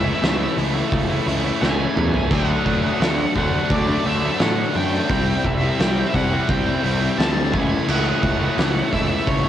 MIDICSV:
0, 0, Header, 1, 6, 480
1, 0, Start_track
1, 0, Key_signature, 3, "major"
1, 0, Tempo, 695249
1, 1597, Time_signature, 4, 2, 24, 8
1, 6550, End_track
2, 0, Start_track
2, 0, Title_t, "Lead electric guitar"
2, 0, Program_c, 0, 29
2, 0, Note_on_c, 0, 76, 83
2, 371, Note_off_c, 0, 76, 0
2, 1116, Note_on_c, 0, 80, 95
2, 1569, Note_off_c, 0, 80, 0
2, 1611, Note_on_c, 0, 78, 96
2, 2297, Note_off_c, 0, 78, 0
2, 2333, Note_on_c, 0, 78, 95
2, 2549, Note_off_c, 0, 78, 0
2, 2567, Note_on_c, 0, 74, 106
2, 2807, Note_off_c, 0, 74, 0
2, 2810, Note_on_c, 0, 76, 98
2, 3048, Note_on_c, 0, 78, 94
2, 3051, Note_off_c, 0, 76, 0
2, 3290, Note_off_c, 0, 78, 0
2, 3293, Note_on_c, 0, 79, 108
2, 3764, Note_on_c, 0, 76, 101
2, 3780, Note_off_c, 0, 79, 0
2, 4006, Note_on_c, 0, 79, 102
2, 4008, Note_off_c, 0, 76, 0
2, 4191, Note_on_c, 0, 76, 80
2, 4200, Note_off_c, 0, 79, 0
2, 4239, Note_off_c, 0, 76, 0
2, 4244, Note_on_c, 0, 78, 103
2, 4482, Note_off_c, 0, 78, 0
2, 4485, Note_on_c, 0, 79, 113
2, 4957, Note_off_c, 0, 79, 0
2, 4959, Note_on_c, 0, 81, 100
2, 5206, Note_off_c, 0, 81, 0
2, 5209, Note_on_c, 0, 80, 110
2, 5448, Note_off_c, 0, 80, 0
2, 5451, Note_on_c, 0, 78, 113
2, 6167, Note_on_c, 0, 76, 99
2, 6187, Note_off_c, 0, 78, 0
2, 6405, Note_off_c, 0, 76, 0
2, 6408, Note_on_c, 0, 73, 109
2, 6550, Note_off_c, 0, 73, 0
2, 6550, End_track
3, 0, Start_track
3, 0, Title_t, "Distorted electric guitar"
3, 0, Program_c, 1, 30
3, 0, Note_on_c, 1, 49, 74
3, 30, Note_on_c, 1, 64, 76
3, 40, Note_on_c, 1, 57, 74
3, 49, Note_on_c, 1, 52, 66
3, 143, Note_off_c, 1, 49, 0
3, 151, Note_on_c, 1, 49, 86
3, 152, Note_off_c, 1, 52, 0
3, 160, Note_on_c, 1, 52, 92
3, 164, Note_off_c, 1, 57, 0
3, 164, Note_off_c, 1, 64, 0
3, 167, Note_on_c, 1, 57, 97
3, 173, Note_on_c, 1, 64, 100
3, 382, Note_off_c, 1, 49, 0
3, 391, Note_off_c, 1, 52, 0
3, 391, Note_on_c, 1, 49, 77
3, 399, Note_on_c, 1, 52, 87
3, 402, Note_off_c, 1, 64, 0
3, 403, Note_off_c, 1, 57, 0
3, 406, Note_on_c, 1, 57, 90
3, 410, Note_on_c, 1, 64, 86
3, 507, Note_off_c, 1, 64, 0
3, 515, Note_on_c, 1, 64, 74
3, 517, Note_off_c, 1, 57, 0
3, 525, Note_on_c, 1, 57, 69
3, 526, Note_off_c, 1, 52, 0
3, 534, Note_on_c, 1, 52, 62
3, 746, Note_off_c, 1, 64, 0
3, 754, Note_off_c, 1, 49, 0
3, 755, Note_on_c, 1, 64, 83
3, 758, Note_off_c, 1, 57, 0
3, 766, Note_off_c, 1, 52, 0
3, 766, Note_on_c, 1, 57, 68
3, 774, Note_on_c, 1, 52, 57
3, 876, Note_off_c, 1, 52, 0
3, 876, Note_on_c, 1, 49, 71
3, 881, Note_off_c, 1, 57, 0
3, 884, Note_on_c, 1, 52, 76
3, 887, Note_off_c, 1, 64, 0
3, 889, Note_on_c, 1, 57, 92
3, 895, Note_on_c, 1, 64, 93
3, 987, Note_off_c, 1, 64, 0
3, 995, Note_on_c, 1, 64, 79
3, 997, Note_off_c, 1, 57, 0
3, 1005, Note_on_c, 1, 57, 71
3, 1006, Note_off_c, 1, 52, 0
3, 1014, Note_on_c, 1, 52, 65
3, 1109, Note_off_c, 1, 49, 0
3, 1117, Note_on_c, 1, 49, 91
3, 1118, Note_off_c, 1, 52, 0
3, 1125, Note_off_c, 1, 57, 0
3, 1126, Note_on_c, 1, 52, 100
3, 1129, Note_off_c, 1, 64, 0
3, 1133, Note_on_c, 1, 57, 103
3, 1138, Note_on_c, 1, 64, 110
3, 1231, Note_off_c, 1, 64, 0
3, 1239, Note_on_c, 1, 64, 84
3, 1241, Note_off_c, 1, 57, 0
3, 1249, Note_on_c, 1, 57, 67
3, 1252, Note_off_c, 1, 52, 0
3, 1261, Note_on_c, 1, 52, 64
3, 1468, Note_off_c, 1, 64, 0
3, 1477, Note_off_c, 1, 49, 0
3, 1477, Note_on_c, 1, 64, 81
3, 1478, Note_off_c, 1, 57, 0
3, 1484, Note_off_c, 1, 52, 0
3, 1487, Note_on_c, 1, 57, 84
3, 1493, Note_on_c, 1, 52, 66
3, 1582, Note_off_c, 1, 64, 0
3, 1588, Note_off_c, 1, 57, 0
3, 1591, Note_off_c, 1, 52, 0
3, 1595, Note_on_c, 1, 50, 91
3, 1603, Note_on_c, 1, 54, 101
3, 1608, Note_on_c, 1, 57, 97
3, 1615, Note_on_c, 1, 62, 98
3, 1822, Note_off_c, 1, 50, 0
3, 1827, Note_off_c, 1, 54, 0
3, 1831, Note_on_c, 1, 50, 72
3, 1835, Note_off_c, 1, 57, 0
3, 1836, Note_on_c, 1, 54, 73
3, 1840, Note_off_c, 1, 62, 0
3, 1844, Note_on_c, 1, 57, 74
3, 1848, Note_on_c, 1, 62, 81
3, 1946, Note_off_c, 1, 62, 0
3, 1954, Note_on_c, 1, 62, 75
3, 1955, Note_off_c, 1, 57, 0
3, 1963, Note_on_c, 1, 57, 76
3, 1965, Note_off_c, 1, 54, 0
3, 1973, Note_on_c, 1, 54, 66
3, 2062, Note_off_c, 1, 50, 0
3, 2070, Note_on_c, 1, 50, 91
3, 2071, Note_off_c, 1, 54, 0
3, 2077, Note_off_c, 1, 57, 0
3, 2080, Note_on_c, 1, 54, 99
3, 2081, Note_off_c, 1, 62, 0
3, 2086, Note_on_c, 1, 57, 98
3, 2090, Note_on_c, 1, 62, 112
3, 2309, Note_off_c, 1, 50, 0
3, 2313, Note_off_c, 1, 54, 0
3, 2317, Note_on_c, 1, 50, 81
3, 2319, Note_off_c, 1, 57, 0
3, 2322, Note_on_c, 1, 54, 79
3, 2327, Note_off_c, 1, 62, 0
3, 2328, Note_on_c, 1, 57, 93
3, 2335, Note_on_c, 1, 62, 86
3, 2425, Note_off_c, 1, 62, 0
3, 2433, Note_off_c, 1, 57, 0
3, 2433, Note_on_c, 1, 62, 69
3, 2441, Note_on_c, 1, 57, 73
3, 2442, Note_off_c, 1, 54, 0
3, 2450, Note_on_c, 1, 54, 66
3, 2665, Note_off_c, 1, 62, 0
3, 2673, Note_on_c, 1, 62, 76
3, 2675, Note_off_c, 1, 57, 0
3, 2677, Note_off_c, 1, 50, 0
3, 2682, Note_off_c, 1, 54, 0
3, 2683, Note_on_c, 1, 57, 73
3, 2690, Note_on_c, 1, 54, 70
3, 2792, Note_on_c, 1, 50, 74
3, 2793, Note_off_c, 1, 54, 0
3, 2797, Note_off_c, 1, 57, 0
3, 2802, Note_on_c, 1, 54, 77
3, 2804, Note_off_c, 1, 62, 0
3, 2806, Note_on_c, 1, 57, 83
3, 2812, Note_on_c, 1, 62, 97
3, 2903, Note_off_c, 1, 62, 0
3, 2912, Note_off_c, 1, 57, 0
3, 2912, Note_on_c, 1, 62, 77
3, 2920, Note_on_c, 1, 57, 77
3, 2922, Note_off_c, 1, 54, 0
3, 2930, Note_on_c, 1, 54, 68
3, 3025, Note_off_c, 1, 50, 0
3, 3031, Note_off_c, 1, 54, 0
3, 3033, Note_on_c, 1, 50, 96
3, 3039, Note_off_c, 1, 57, 0
3, 3039, Note_on_c, 1, 54, 102
3, 3045, Note_off_c, 1, 62, 0
3, 3047, Note_on_c, 1, 57, 96
3, 3053, Note_on_c, 1, 62, 104
3, 3147, Note_off_c, 1, 62, 0
3, 3155, Note_on_c, 1, 62, 77
3, 3157, Note_off_c, 1, 57, 0
3, 3165, Note_off_c, 1, 54, 0
3, 3166, Note_on_c, 1, 57, 66
3, 3173, Note_on_c, 1, 54, 67
3, 3390, Note_off_c, 1, 62, 0
3, 3396, Note_off_c, 1, 50, 0
3, 3398, Note_on_c, 1, 62, 89
3, 3400, Note_off_c, 1, 57, 0
3, 3408, Note_on_c, 1, 57, 78
3, 3409, Note_off_c, 1, 54, 0
3, 3417, Note_on_c, 1, 54, 68
3, 3504, Note_off_c, 1, 62, 0
3, 3509, Note_off_c, 1, 57, 0
3, 3513, Note_off_c, 1, 54, 0
3, 3519, Note_on_c, 1, 48, 94
3, 3526, Note_on_c, 1, 55, 98
3, 3532, Note_on_c, 1, 60, 94
3, 3538, Note_on_c, 1, 64, 107
3, 3752, Note_off_c, 1, 48, 0
3, 3761, Note_off_c, 1, 55, 0
3, 3761, Note_on_c, 1, 48, 80
3, 3764, Note_off_c, 1, 60, 0
3, 3769, Note_on_c, 1, 55, 85
3, 3772, Note_on_c, 1, 60, 88
3, 3778, Note_off_c, 1, 64, 0
3, 3781, Note_on_c, 1, 64, 93
3, 3872, Note_off_c, 1, 64, 0
3, 3875, Note_on_c, 1, 64, 81
3, 3878, Note_off_c, 1, 60, 0
3, 3886, Note_on_c, 1, 60, 74
3, 3888, Note_off_c, 1, 55, 0
3, 3896, Note_on_c, 1, 55, 66
3, 3987, Note_off_c, 1, 48, 0
3, 3995, Note_on_c, 1, 48, 91
3, 3997, Note_off_c, 1, 55, 0
3, 4002, Note_off_c, 1, 60, 0
3, 4005, Note_on_c, 1, 55, 100
3, 4010, Note_on_c, 1, 60, 102
3, 4012, Note_off_c, 1, 64, 0
3, 4015, Note_on_c, 1, 64, 109
3, 4227, Note_off_c, 1, 48, 0
3, 4235, Note_on_c, 1, 48, 82
3, 4237, Note_off_c, 1, 55, 0
3, 4243, Note_off_c, 1, 60, 0
3, 4245, Note_on_c, 1, 55, 85
3, 4251, Note_on_c, 1, 60, 83
3, 4254, Note_off_c, 1, 64, 0
3, 4257, Note_on_c, 1, 64, 88
3, 4358, Note_off_c, 1, 64, 0
3, 4361, Note_on_c, 1, 64, 73
3, 4366, Note_off_c, 1, 60, 0
3, 4371, Note_off_c, 1, 55, 0
3, 4374, Note_on_c, 1, 60, 72
3, 4379, Note_on_c, 1, 55, 69
3, 4597, Note_off_c, 1, 48, 0
3, 4600, Note_off_c, 1, 64, 0
3, 4602, Note_on_c, 1, 64, 77
3, 4604, Note_off_c, 1, 60, 0
3, 4612, Note_off_c, 1, 55, 0
3, 4612, Note_on_c, 1, 60, 73
3, 4620, Note_on_c, 1, 55, 62
3, 4720, Note_off_c, 1, 55, 0
3, 4721, Note_on_c, 1, 48, 81
3, 4728, Note_off_c, 1, 60, 0
3, 4728, Note_on_c, 1, 55, 77
3, 4736, Note_off_c, 1, 64, 0
3, 4737, Note_on_c, 1, 60, 89
3, 4738, Note_on_c, 1, 64, 93
3, 4842, Note_off_c, 1, 64, 0
3, 4845, Note_on_c, 1, 64, 76
3, 4848, Note_off_c, 1, 60, 0
3, 4855, Note_off_c, 1, 55, 0
3, 4856, Note_on_c, 1, 60, 68
3, 4863, Note_on_c, 1, 55, 64
3, 4959, Note_off_c, 1, 48, 0
3, 4964, Note_off_c, 1, 55, 0
3, 4967, Note_on_c, 1, 48, 89
3, 4969, Note_off_c, 1, 60, 0
3, 4972, Note_on_c, 1, 55, 105
3, 4977, Note_on_c, 1, 60, 100
3, 4980, Note_off_c, 1, 64, 0
3, 4983, Note_on_c, 1, 64, 106
3, 5078, Note_off_c, 1, 64, 0
3, 5081, Note_on_c, 1, 64, 76
3, 5083, Note_off_c, 1, 60, 0
3, 5091, Note_on_c, 1, 60, 74
3, 5093, Note_off_c, 1, 55, 0
3, 5101, Note_on_c, 1, 55, 65
3, 5189, Note_off_c, 1, 48, 0
3, 5191, Note_off_c, 1, 60, 0
3, 5195, Note_off_c, 1, 55, 0
3, 5201, Note_on_c, 1, 49, 104
3, 5208, Note_on_c, 1, 52, 105
3, 5212, Note_on_c, 1, 57, 120
3, 5217, Note_off_c, 1, 64, 0
3, 5220, Note_on_c, 1, 64, 121
3, 5317, Note_off_c, 1, 64, 0
3, 5320, Note_on_c, 1, 64, 86
3, 5331, Note_off_c, 1, 57, 0
3, 5333, Note_on_c, 1, 57, 80
3, 5339, Note_off_c, 1, 52, 0
3, 5341, Note_on_c, 1, 52, 78
3, 5432, Note_off_c, 1, 49, 0
3, 5435, Note_on_c, 1, 49, 100
3, 5441, Note_off_c, 1, 52, 0
3, 5444, Note_on_c, 1, 52, 101
3, 5447, Note_off_c, 1, 57, 0
3, 5450, Note_on_c, 1, 57, 110
3, 5451, Note_off_c, 1, 64, 0
3, 5454, Note_on_c, 1, 64, 103
3, 5676, Note_off_c, 1, 49, 0
3, 5679, Note_on_c, 1, 49, 78
3, 5683, Note_off_c, 1, 52, 0
3, 5686, Note_on_c, 1, 52, 80
3, 5691, Note_off_c, 1, 57, 0
3, 5694, Note_on_c, 1, 57, 82
3, 5696, Note_off_c, 1, 64, 0
3, 5699, Note_on_c, 1, 64, 91
3, 5795, Note_off_c, 1, 64, 0
3, 5798, Note_on_c, 1, 64, 76
3, 5806, Note_off_c, 1, 57, 0
3, 5809, Note_on_c, 1, 57, 75
3, 5812, Note_off_c, 1, 52, 0
3, 5815, Note_on_c, 1, 52, 65
3, 5910, Note_off_c, 1, 49, 0
3, 5913, Note_on_c, 1, 49, 94
3, 5918, Note_off_c, 1, 52, 0
3, 5921, Note_on_c, 1, 52, 104
3, 5925, Note_off_c, 1, 57, 0
3, 5928, Note_off_c, 1, 64, 0
3, 5928, Note_on_c, 1, 57, 111
3, 5931, Note_on_c, 1, 64, 103
3, 6151, Note_off_c, 1, 49, 0
3, 6154, Note_on_c, 1, 49, 81
3, 6160, Note_off_c, 1, 52, 0
3, 6162, Note_on_c, 1, 52, 78
3, 6164, Note_off_c, 1, 57, 0
3, 6167, Note_on_c, 1, 57, 91
3, 6169, Note_off_c, 1, 64, 0
3, 6172, Note_on_c, 1, 64, 89
3, 6277, Note_off_c, 1, 64, 0
3, 6280, Note_on_c, 1, 64, 80
3, 6286, Note_off_c, 1, 57, 0
3, 6289, Note_on_c, 1, 57, 67
3, 6296, Note_off_c, 1, 52, 0
3, 6299, Note_on_c, 1, 52, 68
3, 6515, Note_off_c, 1, 64, 0
3, 6517, Note_off_c, 1, 49, 0
3, 6518, Note_on_c, 1, 64, 80
3, 6525, Note_off_c, 1, 57, 0
3, 6528, Note_on_c, 1, 57, 67
3, 6535, Note_off_c, 1, 52, 0
3, 6550, Note_off_c, 1, 57, 0
3, 6550, Note_off_c, 1, 64, 0
3, 6550, End_track
4, 0, Start_track
4, 0, Title_t, "Distorted electric guitar"
4, 0, Program_c, 2, 30
4, 1347, Note_on_c, 2, 49, 78
4, 1354, Note_on_c, 2, 52, 80
4, 1357, Note_on_c, 2, 57, 74
4, 1364, Note_on_c, 2, 64, 78
4, 1578, Note_off_c, 2, 49, 0
4, 1581, Note_off_c, 2, 52, 0
4, 1583, Note_off_c, 2, 57, 0
4, 1586, Note_off_c, 2, 64, 0
4, 3269, Note_on_c, 2, 50, 81
4, 3277, Note_on_c, 2, 54, 77
4, 3281, Note_on_c, 2, 57, 75
4, 3286, Note_on_c, 2, 62, 85
4, 3499, Note_off_c, 2, 50, 0
4, 3503, Note_off_c, 2, 54, 0
4, 3505, Note_off_c, 2, 57, 0
4, 3508, Note_off_c, 2, 62, 0
4, 6550, End_track
5, 0, Start_track
5, 0, Title_t, "Picked electric bass"
5, 0, Program_c, 3, 34
5, 0, Note_on_c, 3, 37, 101
5, 75, Note_off_c, 3, 37, 0
5, 153, Note_on_c, 3, 37, 102
5, 313, Note_off_c, 3, 37, 0
5, 397, Note_on_c, 3, 37, 98
5, 556, Note_off_c, 3, 37, 0
5, 636, Note_on_c, 3, 37, 98
5, 796, Note_off_c, 3, 37, 0
5, 873, Note_on_c, 3, 37, 93
5, 1034, Note_off_c, 3, 37, 0
5, 1117, Note_on_c, 3, 37, 94
5, 1276, Note_off_c, 3, 37, 0
5, 1356, Note_on_c, 3, 40, 97
5, 1515, Note_off_c, 3, 40, 0
5, 1595, Note_on_c, 3, 38, 95
5, 1755, Note_off_c, 3, 38, 0
5, 1836, Note_on_c, 3, 38, 98
5, 1996, Note_off_c, 3, 38, 0
5, 2077, Note_on_c, 3, 38, 98
5, 2236, Note_off_c, 3, 38, 0
5, 2320, Note_on_c, 3, 38, 97
5, 2478, Note_off_c, 3, 38, 0
5, 2557, Note_on_c, 3, 38, 98
5, 2716, Note_off_c, 3, 38, 0
5, 2801, Note_on_c, 3, 38, 95
5, 2959, Note_off_c, 3, 38, 0
5, 3038, Note_on_c, 3, 45, 91
5, 3197, Note_off_c, 3, 45, 0
5, 3282, Note_on_c, 3, 42, 103
5, 3440, Note_off_c, 3, 42, 0
5, 3518, Note_on_c, 3, 36, 92
5, 3677, Note_off_c, 3, 36, 0
5, 3759, Note_on_c, 3, 36, 102
5, 3918, Note_off_c, 3, 36, 0
5, 4001, Note_on_c, 3, 36, 107
5, 4159, Note_off_c, 3, 36, 0
5, 4241, Note_on_c, 3, 36, 104
5, 4399, Note_off_c, 3, 36, 0
5, 4480, Note_on_c, 3, 36, 101
5, 4638, Note_off_c, 3, 36, 0
5, 4724, Note_on_c, 3, 36, 92
5, 4881, Note_off_c, 3, 36, 0
5, 4959, Note_on_c, 3, 38, 99
5, 5203, Note_on_c, 3, 37, 103
5, 5213, Note_off_c, 3, 38, 0
5, 5361, Note_off_c, 3, 37, 0
5, 5438, Note_on_c, 3, 37, 101
5, 5598, Note_off_c, 3, 37, 0
5, 5682, Note_on_c, 3, 37, 102
5, 5841, Note_off_c, 3, 37, 0
5, 5922, Note_on_c, 3, 37, 104
5, 6081, Note_off_c, 3, 37, 0
5, 6166, Note_on_c, 3, 37, 102
5, 6323, Note_off_c, 3, 37, 0
5, 6403, Note_on_c, 3, 37, 108
5, 6550, Note_off_c, 3, 37, 0
5, 6550, End_track
6, 0, Start_track
6, 0, Title_t, "Drums"
6, 156, Note_on_c, 9, 46, 90
6, 164, Note_on_c, 9, 38, 121
6, 225, Note_off_c, 9, 46, 0
6, 233, Note_off_c, 9, 38, 0
6, 398, Note_on_c, 9, 46, 67
6, 468, Note_off_c, 9, 46, 0
6, 636, Note_on_c, 9, 36, 116
6, 636, Note_on_c, 9, 46, 95
6, 705, Note_off_c, 9, 36, 0
6, 705, Note_off_c, 9, 46, 0
6, 881, Note_on_c, 9, 46, 64
6, 950, Note_off_c, 9, 46, 0
6, 1124, Note_on_c, 9, 38, 70
6, 1193, Note_off_c, 9, 38, 0
6, 1361, Note_on_c, 9, 45, 104
6, 1430, Note_off_c, 9, 45, 0
6, 1478, Note_on_c, 9, 43, 102
6, 1547, Note_off_c, 9, 43, 0
6, 1593, Note_on_c, 9, 49, 120
6, 1595, Note_on_c, 9, 36, 127
6, 1662, Note_off_c, 9, 49, 0
6, 1664, Note_off_c, 9, 36, 0
6, 1836, Note_on_c, 9, 46, 70
6, 1837, Note_on_c, 9, 36, 80
6, 1905, Note_off_c, 9, 46, 0
6, 1906, Note_off_c, 9, 36, 0
6, 2079, Note_on_c, 9, 46, 96
6, 2087, Note_on_c, 9, 38, 126
6, 2148, Note_off_c, 9, 46, 0
6, 2156, Note_off_c, 9, 38, 0
6, 2317, Note_on_c, 9, 36, 82
6, 2319, Note_on_c, 9, 46, 73
6, 2386, Note_off_c, 9, 36, 0
6, 2388, Note_off_c, 9, 46, 0
6, 2554, Note_on_c, 9, 46, 97
6, 2556, Note_on_c, 9, 36, 121
6, 2623, Note_off_c, 9, 46, 0
6, 2626, Note_off_c, 9, 36, 0
6, 2794, Note_on_c, 9, 46, 73
6, 2863, Note_off_c, 9, 46, 0
6, 3031, Note_on_c, 9, 46, 99
6, 3039, Note_on_c, 9, 38, 121
6, 3100, Note_off_c, 9, 46, 0
6, 3108, Note_off_c, 9, 38, 0
6, 3270, Note_on_c, 9, 46, 77
6, 3339, Note_off_c, 9, 46, 0
6, 3515, Note_on_c, 9, 46, 101
6, 3517, Note_on_c, 9, 36, 123
6, 3584, Note_off_c, 9, 46, 0
6, 3586, Note_off_c, 9, 36, 0
6, 3756, Note_on_c, 9, 46, 70
6, 3758, Note_on_c, 9, 36, 85
6, 3825, Note_off_c, 9, 46, 0
6, 3827, Note_off_c, 9, 36, 0
6, 4001, Note_on_c, 9, 46, 92
6, 4009, Note_on_c, 9, 38, 127
6, 4070, Note_off_c, 9, 46, 0
6, 4078, Note_off_c, 9, 38, 0
6, 4241, Note_on_c, 9, 36, 81
6, 4243, Note_on_c, 9, 46, 63
6, 4310, Note_off_c, 9, 36, 0
6, 4312, Note_off_c, 9, 46, 0
6, 4479, Note_on_c, 9, 46, 85
6, 4481, Note_on_c, 9, 36, 120
6, 4548, Note_off_c, 9, 46, 0
6, 4550, Note_off_c, 9, 36, 0
6, 4724, Note_on_c, 9, 46, 68
6, 4793, Note_off_c, 9, 46, 0
6, 4966, Note_on_c, 9, 46, 94
6, 4974, Note_on_c, 9, 38, 127
6, 5035, Note_off_c, 9, 46, 0
6, 5043, Note_off_c, 9, 38, 0
6, 5202, Note_on_c, 9, 36, 115
6, 5204, Note_on_c, 9, 46, 72
6, 5271, Note_off_c, 9, 36, 0
6, 5273, Note_off_c, 9, 46, 0
6, 5443, Note_on_c, 9, 49, 114
6, 5512, Note_off_c, 9, 49, 0
6, 5682, Note_on_c, 9, 46, 69
6, 5683, Note_on_c, 9, 36, 89
6, 5751, Note_off_c, 9, 46, 0
6, 5752, Note_off_c, 9, 36, 0
6, 5923, Note_on_c, 9, 46, 97
6, 5931, Note_on_c, 9, 38, 123
6, 5992, Note_off_c, 9, 46, 0
6, 6000, Note_off_c, 9, 38, 0
6, 6163, Note_on_c, 9, 36, 84
6, 6165, Note_on_c, 9, 46, 69
6, 6232, Note_off_c, 9, 36, 0
6, 6234, Note_off_c, 9, 46, 0
6, 6401, Note_on_c, 9, 46, 100
6, 6402, Note_on_c, 9, 36, 125
6, 6470, Note_off_c, 9, 46, 0
6, 6471, Note_off_c, 9, 36, 0
6, 6550, End_track
0, 0, End_of_file